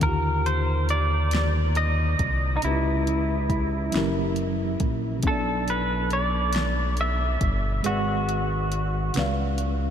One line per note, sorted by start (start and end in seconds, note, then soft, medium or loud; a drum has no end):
0.00 2.16 D#2 loud
0.00 2.59 D3 medium
0.00 2.57 D#3 medium
0.00 2.58 A#3 medium
0.00 0.47 A#4 loud
0.00 kick loud
0.00 closed hi-hat medium
0.06 2.61 F4 medium
0.06 2.62 G4 medium
0.46 0.90 C5 loud
0.46 closed hi-hat soft
0.89 1.77 D5 loud
0.89 closed hi-hat medium
1.31 snare loud
1.31 closed hi-hat medium
1.75 2.59 D#5 loud
1.75 closed hi-hat medium
2.19 2.59 C2 medium
2.19 kick medium
2.19 closed hi-hat medium
2.57 2.63 D#4 medium
2.62 3.90 C#2 loud
2.62 3.93 C#3 medium
2.62 3.92 C#4 medium
2.62 2.70 D#4 soft
2.62 4.77 E4 medium
2.62 3.95 G4 medium
2.62 closed hi-hat medium
2.67 3.94 E4 medium
2.67 3.96 B4 medium
3.07 closed hi-hat medium
3.50 kick medium
3.50 closed hi-hat medium
3.92 4.77 F#1 medium
3.92 5.23 F#3 medium
3.92 5.24 C#4 medium
3.92 5.25 E4 medium
3.92 snare loud
3.92 closed hi-hat medium
3.96 5.25 G4 medium
3.96 5.26 A#4 medium
4.36 closed hi-hat soft
4.80 5.20 A#1 medium
4.80 kick loud
4.80 closed hi-hat medium
5.20 7.79 B2 medium
5.20 7.80 B3 medium
5.20 closed hi-hat medium
5.24 7.37 B1 loud
5.24 7.81 D4 medium
5.24 5.70 A4 medium
5.24 kick loud
5.28 7.83 A4 medium
5.28 7.84 D5 medium
5.68 6.13 B4 medium
5.68 closed hi-hat soft
6.11 7.00 D5 loud
6.11 closed hi-hat medium
6.53 snare loud
6.53 closed hi-hat medium
6.97 7.89 E5 loud
6.97 closed hi-hat medium
7.41 7.81 G1 medium
7.41 kick loud
7.41 closed hi-hat medium
7.83 9.12 G#1 loud
7.83 9.14 G#3 medium
7.83 9.90 F#4 medium
7.83 9.15 G#4 medium
7.83 9.15 B4 medium
7.83 9.16 D5 medium
7.83 closed hi-hat medium
7.88 9.17 F#5 medium
8.29 closed hi-hat soft
8.72 closed hi-hat medium
9.14 9.90 C#2 medium
9.14 9.90 C#3 medium
9.14 9.90 C#4 medium
9.14 9.90 B4 medium
9.14 9.90 D5 medium
9.14 snare loud
9.14 closed hi-hat medium
9.19 9.90 F5 medium
9.58 closed hi-hat medium